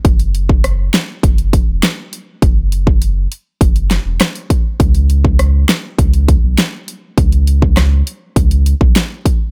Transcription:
<<
  \new Staff \with { instrumentName = "Sub bass" } { \clef bass \time 4/4 \key cis \minor \tempo 4 = 101 fis,,4. r8 fis,,8. e,,16 r4 | fis,,4. r8 fis,,8. e,,16 r4 | cis,4. r8 cis,8. b,,16 r4 | cis,4. r8 cis,8. b,,16 r4 | }
  \new DrumStaff \with { instrumentName = "Drums" } \drummode { \time 4/4 <hh bd>16 hh16 hh16 bd16 <hh ss>8 <hh sn>8 <hh bd>16 hh16 <hh bd>8 <hh sn>8 hh8 | <hh bd>8 hh16 bd16 hh8 hh8 <hh bd>16 hh16 <hh sn>8 <hh ss sn>16 hh16 <hh bd>8 | <hh bd>16 hh16 hh16 bd16 <hh ss>8 <hh sn>8 <hh bd>16 hh16 <hh bd>8 <hh sn>8 hh8 | <hh bd>16 hh16 hh16 bd16 <hh ss sn>8 hh8 <hh bd>16 hh16 hh16 bd16 <hh sn>8 <hh bd>8 | }
>>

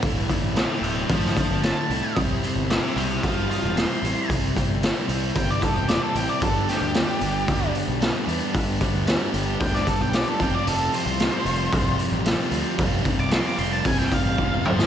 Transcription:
<<
  \new Staff \with { instrumentName = "Lead electric guitar" } { \time 4/4 \key g \mixolydian \tempo 4 = 113 << { r4 <e'' g''>8 <e'' g''>8 <f'' a''>8 <f'' a''>8 a''4 | r4 <e'' g''>8 <e'' g''>8 <c'' a''>8 <c'' a''>8 c'''4 | r2 g''16 d''16 a'16 g''16 d''16 a'16 g''16 d''16 | a'8 g'2 r4. |
r2 g''16 d''16 a'16 g''16 d''16 a'16 g''16 d''16 | a'8 c''2 r4. | r8. d'''16 c'''16 d'''16 c'''16 a''16 gis''16 g''16 f''4. | } \\ { r1 | r1 | r1 | r1 |
r1 | r1 | r2. r8 c''8 | } >> }
  \new Staff \with { instrumentName = "Distorted electric guitar" } { \time 4/4 \key g \mixolydian <d, a, d a e'>8 <d a e'>8 <a, d a e'>8 <d a e'>8 <d, a, d a e'>4 <a, d a e'>8 <d a e'>8 | <c g c' e' g' c''>8 <c' e' g' c''>8 <c' e' g' c''>8 <c' e' g' c''>8 <c g c' e' g' c''>4 <c' e' g' c''>8 <c' e' g' c''>8 | <c g c' e' g' c''>8 <c' e' g' c''>8 <c' e' g' c''>8 <c' e' g' c''>8 <c g c' e' g' c''>4 <c' e' g' c''>8 <c' e' g' c''>8 | <g, d g b d' g'>8 <g b d' g'>8 <g b d' g'>8 <g b d' g'>8 <g, d g b d' g'>4 <g b d' g'>8 <g b d' g'>8 |
<g, d g b d' g'>8 <g b d' g'>8 <g b d' g'>8 <g b d' g'>8 <g, d g b d' g'>4 <g b d' g'>8 <f, c f g c' f'>8 | <f, c f g c' f'>8 <f g c' f'>8 <f g c' f'>8 <f g c' f'>8 <f, c f g c' f'>4 <f g c' f'>8 <f g c' f'>8 | <f, c f g c' f'>8 <f g c' f'>8 <f g c' f'>8 <f g c' f'>8 <f, c f g c' f'>4 <f g c' f'>8 <f g c' f'>8 | }
  \new Staff \with { instrumentName = "Overdriven electric guitar" } { \time 4/4 \key g \mixolydian <d, a, d a e'>8 <d a e'>8 <a, d a e'>8 <d a e'>8 <d, a, d a e'>4 <a, d a e'>8 <d a e'>8 | <c g c' e' g' c''>8 <c' e' g' c''>8 <c' e' g' c''>8 <c' e' g' c''>8 <c g c' e' g' c''>4 <c' e' g' c''>8 <c' e' g' c''>8 | <c g c' e' g' c''>8 <c' e' g' c''>8 <c' e' g' c''>8 <c' e' g' c''>8 <c g c' e' g' c''>4 <c' e' g' c''>8 <c' e' g' c''>8 | <g, d g b d' g'>8 <g b d' g'>8 <g b d' g'>8 <g b d' g'>8 <g, d g b d' g'>4 <g b d' g'>8 <g b d' g'>8 |
<g, d g b d' g'>8 <g b d' g'>8 <g b d' g'>8 <g b d' g'>8 <g, d g b d' g'>4 <g b d' g'>8 <f, c f g c' f'>8 | <f, c f g c' f'>8 <f g c' f'>8 <f g c' f'>8 <f g c' f'>8 <f, c f g c' f'>4 <f g c' f'>8 <f g c' f'>8 | <f, c f g c' f'>8 <f g c' f'>8 <f g c' f'>8 <f g c' f'>8 <f, c f g c' f'>4 <f g c' f'>8 <f g c' f'>8 | }
  \new Staff \with { instrumentName = "Picked electric bass" } { \clef bass \time 4/4 \key g \mixolydian d,,8 r16 a,,8 r16 d,,8 a,,8 r16 g,,8 r16 c,16 r16 | c,8 r16 g,,8 r16 c,8 g,,8 r16 e,,8 r16 a,,16 r16 | c,8 r16 g,,8 r16 c,8 g,,8 r16 e,,8 r16 a,,16 r16 | g,,8 r16 d,8 r16 g,,8 d,8 r16 b,,8 r16 e,16 r16 |
g,,8 r16 d,8 r16 g,,8 d,8 r16 b,,8 r16 f,,16 r16 | f,,8 r16 c,8 r16 f,,8 c,8 r16 a,,8 r16 d,16 r16 | f,,8 r16 c,8 r16 f,,8 c,8 r16 a,,16 e,,8 d,,8 | }
  \new DrumStaff \with { instrumentName = "Drums" } \drummode { \time 4/4 <hho bd>8 <hho bd>8 <hho sn>8 hho8 <hho bd>16 sn16 <hho bd>8 <hho sn>8 hho8 | <hho bd>8 hho8 <hho sn>8 hho8 <hho bd>8 hho8 <hho sn>8 hho8 | <hho bd>8 <hho bd>8 <hho sn>8 hho8 <hho bd>8 <hho bd>8 <hho sn>8 hho8 | <hho bd>8 <hho sn>8 <hho sn>8 hho8 <hho bd>8 hho8 <hho sn>8 hho8 |
<hho bd>8 <hho bd>8 <hho sn>8 hho8 <hho bd>16 sn16 <hho bd>8 <hho sn>8 <hho bd>8 | hho8 hho8 <hho sn>8 hho8 <hho bd>8 hho8 <hho sn>8 hho8 | <hho bd>8 <hho bd>8 <hho sn>8 hho8 <hho bd>16 sn16 <hho bd>8 bd8 toml16 sn16 | }
>>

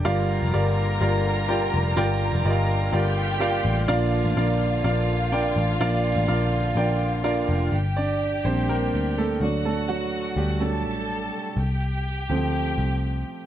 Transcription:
<<
  \new Staff \with { instrumentName = "Violin section" } { \time 4/4 \key g \minor \tempo 4 = 125 <bes' bes''>1~ | <bes' bes''>2 <g' g''>2 | <f' f''>1~ | <f' f''>1 |
<g' g''>2.~ <g' g''>8 <fis' fis''>8~ | <fis' fis''>2 <a' a''>2 | <g' g''>1 | }
  \new Staff \with { instrumentName = "Grand piano" } { \time 4/4 \key g \minor <f' g' bes' d'' f''>8 r8 <f' g' bes' d'' f''>8 r8 <f' g' bes' d'' f''>8 r8 <f' g' bes' d'' g''>8 r8 | <f' g' bes' d'' g''>8 r8 <f' g' bes' d'' ees'' f''>8 r8 <f' g' bes' d'' f''>8 r8 <f' g' bes' d'' f''>8 r8 | <d' f' bes' d'' f''>8 r8 <d' f' bes' d'' f''>8 r8 <d' f' bes' d'' f''>8 r8 <d' f' bes' d'' g''>8 r8 | <d' f' bes' d'' f''>8 r8 <d' f' bes' d'' f''>8 r8 <d' f' bes' d'' g''>8 r8 <d' f' bes' d'' f''>8 r8 |
r8 <d' d''>4 <c' c''>8 <bes bes'>4 <a a'>4 | <a a'>8 <fis fis'>4 <g g'>8 a'4. r8 | r1 | }
  \new Staff \with { instrumentName = "Grand piano" } { \clef bass \time 4/4 \key g \minor g,4. r2 r8 | g,4. r2 r8 | bes,4. r2 r8 | bes,4. r2 r8 |
r4. <g bes d'>4. r8 <fis a d'>8~ | <fis a d'>4 r4 <fis a d'>8 r4. | r4. <f a c'>2~ <f a c'>8 | }
  \new Staff \with { instrumentName = "Accordion" } { \clef bass \time 4/4 \key g \minor << { <d f'>1~ | <d f'>1~ | <d f'>1~ | <d f'>1 |
r1 | r1 | r1 | } \\ { <g bes>1~ | <g bes>1 | <f bes>1~ | <f bes>1 |
r1 | r1 | r1 | } >> }
  \new Staff \with { instrumentName = "Picked electric bass" } { \clef bass \time 4/4 \key g \minor g,,8. f,,16 g,,4 g,,4. f,,8 | g,,8. f,,16 g,,4 g,,4. a,,8 | bes,,8. a,,16 bes,,4 bes,,4. a,,8 | bes,,8. a,,16 bes,,4 bes,,4. f,,8 |
g,,4. bes,,4 d,4 d,8~ | d,4. d,4 a,,4 r8 | c,4. d,4 c,4 r8 | }
>>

